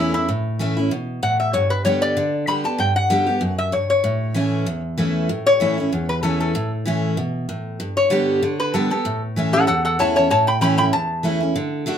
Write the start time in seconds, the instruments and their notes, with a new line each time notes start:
Already playing: steel-string acoustic guitar E2 E3 A3, resonator guitar played with a steel bar E4
0.00 steel-string acoustic guitar C#4 E4
0.14 steel-string acoustic guitar C#4 E4, resonator guitar played with a steel bar E4
0.29 steel-string acoustic guitar A2
0.59 steel-string acoustic guitar E3 A3 C#4 E4
0.77 steel-string acoustic guitar C#4 E4
0.91 steel-string acoustic guitar B2
1.23 steel-string acoustic guitar A2, resonator guitar played with a steel bar F#5
1.40 resonator guitar played with a steel bar E5
1.53 steel-string acoustic guitar G2, resonator guitar played with a steel bar C#5
1.70 resonator guitar played with a steel bar B4
1.85 steel-string acoustic guitar D3 G3 B3 G4, resonator guitar played with a steel bar C#5
2.02 resonator guitar played with a steel bar D5
2.17 steel-string acoustic guitar D3
2.47 steel-string acoustic guitar D3 G3 B3 G4, resonator guitar played with a steel bar B5
2.64 steel-string acoustic guitar B3 G4, resonator guitar played with a steel bar A5
2.78 steel-string acoustic guitar G2, resonator guitar played with a steel bar G5
2.96 resonator guitar played with a steel bar F#5
3.10 steel-string acoustic guitar D3 G3 B3 G4
3.27 steel-string acoustic guitar B3 G4
3.41 steel-string acoustic guitar F#2
3.58 resonator guitar played with a steel bar E5
3.72 steel-string acoustic guitar G2, resonator guitar played with a steel bar C#5
3.90 resonator guitar played with a steel bar C#5
4.04 steel-string acoustic guitar A2
4.34 steel-string acoustic guitar E3 A3 C#4 E4
4.66 steel-string acoustic guitar E2
4.98 steel-string acoustic guitar E3 A3 C#4 E4
5.29 steel-string acoustic guitar A2
5.46 resonator guitar played with a steel bar C#5
5.60 steel-string acoustic guitar E3 A3 C#4 E4
5.78 steel-string acoustic guitar C#4 E4
5.93 steel-string acoustic guitar E2
6.09 resonator guitar played with a steel bar B4
6.23 steel-string acoustic guitar E3 A3 C#4 E4, resonator guitar played with a steel bar A4
6.40 resonator guitar played with a steel bar A4
6.55 steel-string acoustic guitar A2
6.86 steel-string acoustic guitar E3 A3 C#4 E4
7.17 steel-string acoustic guitar B2
7.49 steel-string acoustic guitar A2
7.80 steel-string acoustic guitar G2
7.97 resonator guitar played with a steel bar C#5
8.10 steel-string acoustic guitar D3 G3 B3 G4
8.43 steel-string acoustic guitar D3
8.60 resonator guitar played with a steel bar B4
8.74 steel-string acoustic guitar D3 G3 B3 G4, resonator guitar played with a steel bar A4
8.90 steel-string acoustic guitar B3 G4, resonator guitar played with a steel bar A4
9.05 steel-string acoustic guitar A2
9.36 steel-string acoustic guitar E3 A3 C#4 E4
9.53 steel-string acoustic guitar C#4 E4, resonator guitar played with a steel bar A4 F#5
9.67 steel-string acoustic guitar E2, resonator guitar played with a steel bar A4 F#5
9.85 resonator guitar played with a steel bar A4 F#5
9.99 steel-string acoustic guitar E3 A3 C#4 E4, resonator guitar played with a steel bar C#5 A5
10.16 steel-string acoustic guitar C#4 E4, resonator guitar played with a steel bar C#5 A5
10.30 steel-string acoustic guitar A2, resonator guitar played with a steel bar C#5 A5
10.47 resonator guitar played with a steel bar G5 B5
10.61 steel-string acoustic guitar E3 A3 C#4 E4, resonator guitar played with a steel bar G5 B5
10.78 steel-string acoustic guitar C#4 E4, resonator guitar played with a steel bar G5 B5
10.93 steel-string acoustic guitar E2, resonator guitar played with a steel bar A5
11.23 steel-string acoustic guitar E3 A3 C#4 E4
11.41 steel-string acoustic guitar C#4 E4
11.56 steel-string acoustic guitar D3
11.86 steel-string acoustic guitar D3 A3 D4 F#4